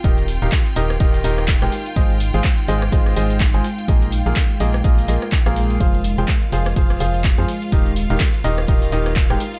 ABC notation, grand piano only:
X:1
M:4/4
L:1/16
Q:"Swing 16ths" 1/4=125
K:Ebmix
V:1 name="Grand piano"
[E,EGBe] z2 [E,EGBf] z2 [E,EGBe] z [E,EGBe]2 [E,EGBe] z2 [A,EGBg] z2 | [A,FAce] z2 [A,FAcf] z2 [A,FAce] z [A,FAce]2 [A,FAce] z2 [A,FAca] z2 | [B,FABe] z2 [B,FABf] z2 [B,FABe] z [B,FABe]2 [B,FABe] z2 [B,FABf]3 | [F,FAcf] z2 [F,FAcg] z2 [F,FAcf] z [F,FAcf]2 [F,FAcf] z2 [F,FAca] z2 |
[E,EGBe] z2 [E,EGBf] z2 [E,EGBe] z [E,EGBe]2 [E,EGBe] z2 [A,EGBg] z2 |]